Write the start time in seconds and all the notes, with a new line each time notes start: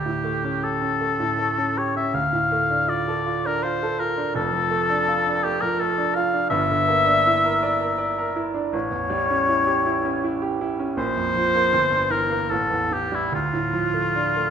Already playing: D2 G4
0.06 A2
0.24 A3
0.44 C#4
0.62 G4 A4
0.82 C#4
1.01 A3
1.20 A2
1.38 A3
1.58 C#4
1.78 G4 C#5
1.96 C#4 E5
2.14 D2 F5
2.33 A2
2.52 A3
2.70 D4
2.88 F4 D5
3.08 A4
3.26 F4
3.46 D4 A#4
3.62 F4 C5
3.83 A4
3.99 F4 A#4
4.17 D4
4.34 F1 F2 A4
4.52 F3
4.71 A3
4.90 D4
5.08 F4
5.27 D4
5.44 A3 G4
5.61 F3 A#4
5.80 A3 A4
5.98 D4
6.15 F4 F5
6.34 D4
6.50 G1 G2 E5
6.71 D3
6.88 A#3
7.07 D4
7.27 E4
7.44 A#4
7.63 D5
7.81 A#4
7.98 D5
8.18 A#4
8.36 E4
8.54 D4
8.73 A1 C#5
8.91 E2
9.10 G3
9.31 C#4
9.49 E4
9.67 G4
9.86 E4
10.05 C#4
10.24 E4
10.42 G4
10.61 E4
10.79 C#4
10.97 A#1 C5
11.17 F2
11.35 F3
11.55 A#3
11.73 G1
11.91 G2
12.10 E3 A#4
12.30 A#3
12.50 A1 A4
12.71 E2
12.91 E3 G4
13.12 G3 E4
13.32 D2 F4
13.54 A2
13.73 F3
13.94 A3
14.16 D4
14.36 A3